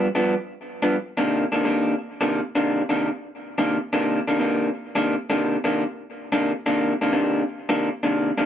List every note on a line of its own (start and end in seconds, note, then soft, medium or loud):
0.15 0.34 G2 medium
0.15 0.34 F3 medium
0.15 0.34 B3 medium
0.15 0.34 D4 medium
0.82 0.96 G2 medium
0.82 0.95 F3 medium
0.82 0.95 B3 medium
0.82 0.95 D4 medium
1.17 1.45 C3 medium
1.17 1.44 D#3 medium
1.17 1.44 A#3 medium
1.17 1.44 D4 medium
1.52 1.63 C3 medium
1.52 1.64 D#3 medium
1.52 1.64 A#3 medium
1.52 1.64 D4 medium
1.64 1.94 C3 medium
1.64 1.94 D#3 medium
1.64 1.94 A#3 medium
1.64 1.94 D4 medium
2.21 2.40 C3 medium
2.21 2.40 D#3 medium
2.21 2.40 A#3 medium
2.21 2.40 D4 medium
2.55 2.82 C3 medium
2.55 2.82 D#3 medium
2.55 2.82 A#3 medium
2.55 2.82 D4 medium
2.89 3.09 C3 medium
2.89 3.09 D#3 medium
2.89 3.09 A#3 medium
2.89 3.08 D4 medium
3.58 3.78 C3 medium
3.58 3.77 D#3 medium
3.58 3.77 A#3 medium
3.58 3.77 D4 medium
3.93 4.19 C3 medium
3.93 4.19 D#3 medium
3.93 4.19 A#3 medium
3.93 4.19 D4 loud
4.28 4.38 C3 medium
4.28 4.39 D#3 medium
4.28 4.39 A#3 medium
4.28 4.39 D4 medium
4.39 4.68 C3 medium
4.39 4.69 D#3 medium
4.39 4.69 A#3 medium
4.39 4.69 D4 medium
4.95 5.15 C3 medium
4.95 5.15 D#3 medium
4.95 5.14 A#3 medium
4.95 5.14 D4 medium
5.30 5.56 C3 medium
5.30 5.56 D#3 medium
5.30 5.56 A#3 medium
5.30 5.56 D4 medium
5.64 5.84 C3 medium
5.64 5.83 D#3 medium
5.64 5.83 A#3 medium
5.64 5.83 D4 medium
6.32 6.52 C3 medium
6.32 6.52 D#3 medium
6.32 6.52 A#3 medium
6.32 6.51 D4 medium
6.66 6.93 C3 medium
6.66 6.93 D#3 medium
6.66 6.93 A#3 medium
6.66 6.93 D4 loud
7.01 7.11 C3 medium
7.01 7.11 D#3 medium
7.01 7.11 A#3 medium
7.01 7.12 D4 medium
7.12 7.42 C3 medium
7.12 7.42 D#3 medium
7.12 7.42 A#3 medium
7.12 7.43 D4 medium
7.69 7.89 C3 medium
7.69 7.89 D#3 medium
7.69 7.88 A#3 medium
7.69 7.88 D4 loud
8.03 8.30 C3 medium
8.03 8.30 D#3 medium
8.03 8.30 A#3 medium
8.03 8.30 D4 medium
8.38 8.46 C3 medium
8.38 8.46 D#3 medium
8.38 8.46 A#3 medium
8.38 8.46 D4 medium